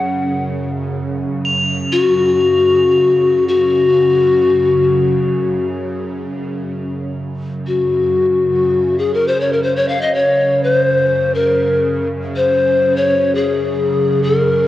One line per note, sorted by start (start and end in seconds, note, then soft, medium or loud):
0.00 6.50 F#2 medium
0.00 6.49 C#3 medium
0.00 0.47 F#5 medium
1.45 6.93 F7 soft
1.92 3.44 F#4 medium
3.48 5.66 F#4 medium
6.51 14.68 F#2 medium
6.51 14.68 C#3 medium
7.67 9.00 F#4 medium
8.98 9.13 G#4 medium
9.14 9.29 A#4 medium
9.28 9.42 C5 medium
9.40 9.54 C#5 medium
9.53 9.64 A#4 medium
9.63 9.78 C5 medium
9.76 9.90 C#5 medium
9.88 10.03 F5 medium
10.01 10.16 D#5 medium
10.14 10.65 C#5 medium
10.64 11.36 C5 medium
11.35 12.08 A#4 medium
12.36 12.98 C5 medium
12.96 13.36 C#5 medium
13.35 14.25 G#4 medium
14.23 14.68 A#4 medium